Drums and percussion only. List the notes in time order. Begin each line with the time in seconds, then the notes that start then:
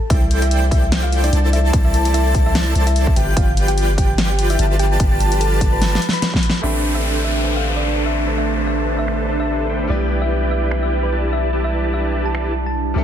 0.10 kick, closed hi-hat
0.31 closed hi-hat
0.42 closed hi-hat
0.51 closed hi-hat
0.71 kick, closed hi-hat
0.92 snare, closed hi-hat
1.12 closed hi-hat
1.24 closed hi-hat
1.33 closed hi-hat
1.53 closed hi-hat
1.73 kick, closed hi-hat
1.94 closed hi-hat
2.05 closed hi-hat
2.14 closed hi-hat
2.35 kick, closed hi-hat
2.55 snare, closed hi-hat
2.75 closed hi-hat
2.87 closed hi-hat
2.96 closed hi-hat
3.07 kick
3.16 closed hi-hat
3.37 kick, closed hi-hat
3.57 closed hi-hat
3.68 closed hi-hat
3.78 closed hi-hat
3.98 kick, closed hi-hat
4.18 snare, closed hi-hat
4.39 closed hi-hat
4.50 closed hi-hat
4.59 closed hi-hat
4.79 closed hi-hat
5.00 kick, closed hi-hat
5.20 closed hi-hat
5.32 closed hi-hat
5.41 closed hi-hat
5.61 kick, closed hi-hat
5.82 snare, closed hi-hat
5.95 snare
6.02 closed hi-hat
6.09 snare
6.13 closed hi-hat
6.22 snare, closed hi-hat
6.34 kick, snare
6.43 closed hi-hat
6.50 snare
7.45 finger snap
9.08 finger snap
10.71 finger snap
12.35 finger snap